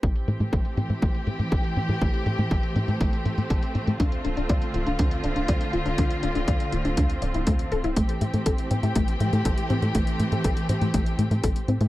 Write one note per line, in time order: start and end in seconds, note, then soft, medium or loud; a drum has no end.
0.03 0.25 A1 medium
0.03 3.96 E3 medium
0.03 0.11 A3 medium
0.03 7.93 A3 medium
0.03 11.88 C4 medium
0.03 3.96 G4 medium
0.03 kick loud
0.03 closed hi-hat medium
0.16 closed hi-hat soft
0.28 0.39 A2 medium
0.28 0.39 A3 medium
0.28 closed hi-hat medium
0.40 0.51 A2 medium
0.40 0.52 A3 medium
0.40 closed hi-hat soft
0.53 0.63 A1 medium
0.53 0.61 A4 medium
0.53 kick loud
0.53 closed hi-hat medium
0.65 closed hi-hat soft
0.77 0.88 A2 medium
0.77 0.86 C4 medium
0.77 closed hi-hat medium
0.90 1.01 A2 medium
0.90 0.95 A3 medium
0.90 closed hi-hat soft
1.02 1.24 A1 medium
1.02 1.11 A3 medium
1.02 kick loud
1.02 closed hi-hat medium
1.14 closed hi-hat soft
1.27 1.38 A2 medium
1.27 1.38 A3 medium
1.27 closed hi-hat medium
1.39 1.50 A2 medium
1.39 1.51 A3 medium
1.39 closed hi-hat soft
1.52 1.63 A1 medium
1.52 1.60 A4 medium
1.52 kick loud
1.52 closed hi-hat medium
1.64 closed hi-hat soft
1.76 1.87 A2 medium
1.76 1.85 C4 medium
1.76 closed hi-hat soft
1.89 2.00 A2 medium
1.89 1.94 A3 medium
1.89 closed hi-hat soft
2.01 2.23 A1 medium
2.01 2.10 A3 medium
2.01 kick loud
2.01 closed hi-hat medium
2.14 closed hi-hat soft
2.26 2.37 A2 medium
2.26 2.38 A3 medium
2.26 closed hi-hat medium
2.38 2.49 A2 medium
2.38 2.50 A3 medium
2.38 closed hi-hat soft
2.51 2.62 A1 medium
2.51 2.59 A4 medium
2.51 kick loud
2.51 closed hi-hat medium
2.63 closed hi-hat soft
2.76 2.87 A2 medium
2.76 2.84 C4 medium
2.76 closed hi-hat medium
2.88 2.99 A2 medium
2.88 2.93 A3 medium
2.88 closed hi-hat soft
3.01 3.22 A1 medium
3.01 3.09 A3 medium
3.01 kick loud
3.01 closed hi-hat medium
3.13 closed hi-hat soft
3.25 3.36 A2 medium
3.25 3.37 A3 medium
3.25 closed hi-hat medium
3.38 3.49 A2 medium
3.38 3.50 A3 medium
3.38 closed hi-hat soft
3.50 3.61 A1 medium
3.50 3.58 A4 medium
3.50 kick loud
3.50 closed hi-hat medium
3.63 closed hi-hat soft
3.75 3.86 A2 medium
3.75 3.83 C4 medium
3.75 closed hi-hat soft
3.87 3.98 A2 medium
3.87 3.92 A3 medium
3.87 closed hi-hat soft
4.00 4.21 D2 medium
4.00 7.93 D3 medium
4.00 4.08 D4 medium
4.00 7.93 F4 medium
4.00 kick loud
4.00 closed hi-hat medium
4.12 closed hi-hat soft
4.25 4.35 D1 medium
4.25 4.36 D4 medium
4.25 closed hi-hat medium
4.37 4.48 D1 medium
4.37 4.49 D4 medium
4.37 closed hi-hat soft
4.49 4.60 D2 medium
4.49 4.58 D5 medium
4.49 kick loud
4.49 closed hi-hat medium
4.62 closed hi-hat soft
4.74 4.85 D1 medium
4.74 4.82 F4 medium
4.74 closed hi-hat medium
4.87 4.97 D1 medium
4.87 4.92 D4 medium
4.87 closed hi-hat soft
4.99 5.20 D2 medium
4.99 5.07 D4 medium
4.99 kick loud
4.99 closed hi-hat medium
5.11 closed hi-hat soft
5.24 5.35 D1 medium
5.24 5.35 D4 medium
5.24 closed hi-hat medium
5.36 5.47 D1 medium
5.36 5.48 D4 medium
5.36 closed hi-hat soft
5.48 5.59 D2 medium
5.48 5.57 D5 medium
5.48 kick loud
5.48 closed hi-hat medium
5.61 closed hi-hat soft
5.73 5.84 D1 medium
5.73 5.82 F4 medium
5.73 closed hi-hat soft
5.86 5.97 D1 medium
5.86 5.91 D4 medium
5.86 closed hi-hat soft
5.98 6.20 D2 loud
5.98 6.06 D4 medium
5.98 kick loud
5.98 closed hi-hat medium
6.11 closed hi-hat soft
6.23 6.34 D1 medium
6.23 6.34 D4 medium
6.23 closed hi-hat medium
6.35 6.46 D1 medium
6.35 6.47 D4 medium
6.35 closed hi-hat soft
6.48 6.59 D2 medium
6.48 6.56 D5 medium
6.48 kick loud
6.48 closed hi-hat medium
6.60 closed hi-hat soft
6.72 6.83 D1 medium
6.72 6.81 F4 medium
6.72 closed hi-hat medium
6.85 6.96 D1 medium
6.85 6.90 D4 medium
6.85 closed hi-hat soft
6.97 7.19 D2 medium
6.97 7.06 D4 medium
6.97 kick loud
6.97 closed hi-hat medium
7.10 closed hi-hat soft
7.22 7.33 D1 medium
7.22 7.30 D5 medium
7.22 closed hi-hat medium
7.34 7.45 D1 medium
7.34 7.43 E4 medium
7.34 closed hi-hat soft
7.47 7.68 D2 medium
7.47 7.52 A3 medium
7.47 kick loud
7.47 closed hi-hat medium
7.59 closed hi-hat soft
7.72 7.82 D1 medium
7.72 7.80 A4 medium
7.72 closed hi-hat soft
7.84 7.95 D1 medium
7.84 7.89 E4 loud
7.84 closed hi-hat soft
7.96 8.18 A1 loud
7.96 11.88 E3 medium
7.96 11.88 A3 medium
7.96 8.05 A3 medium
7.96 11.88 G4 medium
7.96 kick loud
7.96 closed hi-hat medium
8.09 closed hi-hat soft
8.21 8.32 A2 medium
8.21 8.33 A3 medium
8.21 closed hi-hat medium
8.34 8.44 A2 medium
8.34 8.46 A3 medium
8.34 closed hi-hat soft
8.46 8.57 A1 medium
8.46 8.54 A4 medium
8.46 kick loud
8.46 closed hi-hat medium
8.58 closed hi-hat soft
8.71 8.82 A2 medium
8.71 8.79 C4 medium
8.71 closed hi-hat medium
8.83 8.94 A2 medium
8.83 8.88 A3 medium
8.83 closed hi-hat soft
8.96 9.17 A1 medium
8.96 9.04 A3 medium
8.96 kick loud
8.96 closed hi-hat medium
9.08 closed hi-hat soft
9.20 9.31 A2 medium
9.20 9.32 A3 medium
9.20 closed hi-hat medium
9.33 9.44 A2 medium
9.33 9.45 A3 medium
9.33 closed hi-hat soft
9.45 9.56 A1 medium
9.45 9.53 A4 medium
9.45 kick loud
9.45 closed hi-hat medium
9.58 closed hi-hat soft
9.70 9.81 A2 medium
9.70 9.78 C4 medium
9.70 closed hi-hat soft
9.82 9.93 A2 medium
9.82 9.87 A3 medium
9.82 closed hi-hat soft
9.95 10.16 A1 loud
9.95 10.03 A3 medium
9.95 kick loud
9.95 closed hi-hat medium
10.07 closed hi-hat soft
10.20 10.30 A2 medium
10.20 10.31 A3 medium
10.20 closed hi-hat medium
10.32 10.43 A2 medium
10.32 10.44 A3 medium
10.32 closed hi-hat soft
10.44 10.55 A1 medium
10.44 10.53 A4 medium
10.44 kick loud
10.44 closed hi-hat medium
10.57 closed hi-hat soft
10.69 10.80 A2 medium
10.69 10.77 C4 medium
10.69 closed hi-hat medium
10.82 10.92 A2 medium
10.82 10.87 A3 medium
10.82 closed hi-hat soft
10.94 11.15 A1 medium
10.94 11.02 A3 medium
10.94 kick loud
10.94 closed hi-hat medium
11.06 closed hi-hat soft
11.19 11.29 A2 medium
11.19 11.30 A3 medium
11.19 closed hi-hat medium
11.31 11.42 A2 medium
11.31 11.43 A3 medium
11.31 closed hi-hat soft
11.44 11.54 A1 medium
11.44 11.52 A4 medium
11.44 kick loud
11.44 closed hi-hat medium
11.56 closed hi-hat soft
11.68 11.79 A2 medium
11.68 11.77 C4 medium
11.68 closed hi-hat soft
11.81 11.88 A2 medium
11.81 11.86 A3 medium
11.81 closed hi-hat soft